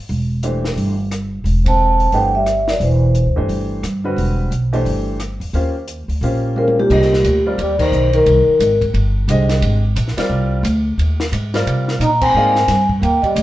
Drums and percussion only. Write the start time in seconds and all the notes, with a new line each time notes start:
0.09 open hi-hat
0.43 closed hi-hat
0.65 snare
0.77 open hi-hat
1.11 cross-stick, closed hi-hat
1.46 open hi-hat
1.66 kick, ride
2.00 open hi-hat
2.12 open hi-hat
2.46 cross-stick, closed hi-hat
2.68 snare
2.81 open hi-hat
3.15 closed hi-hat
3.49 open hi-hat
3.83 cross-stick, closed hi-hat
4.18 open hi-hat
4.52 closed hi-hat
4.73 open hi-hat
4.86 open hi-hat
5.20 cross-stick, closed hi-hat
5.41 open hi-hat
5.54 open hi-hat
5.88 closed hi-hat
6.09 open hi-hat
6.23 open hi-hat
6.56 mid tom
6.68 mid tom
6.79 mid tom
6.90 kick, crash
7.02 snare
7.13 snare
7.24 hi-hat pedal, ride
7.59 ride
7.79 kick, crash
7.93 hi-hat pedal
8.13 ride
8.26 ride
8.60 hi-hat pedal, ride
8.81 kick, ride
8.94 ride
9.29 hi-hat pedal, ride
9.49 snare, ride
9.62 ride
9.96 hi-hat pedal, ride
10.08 snare
10.18 snare, ride
10.65 hi-hat pedal, ride
10.99 ride
11.20 snare
11.33 hi-hat pedal, ride
11.54 snare, ride
11.67 ride
11.88 snare
12.01 hi-hat pedal, ride
12.21 kick, crash
12.56 snare
12.68 snare, hi-hat pedal, ride
12.89 kick
13.03 ride
13.23 kick, ride
13.36 hi-hat pedal, ride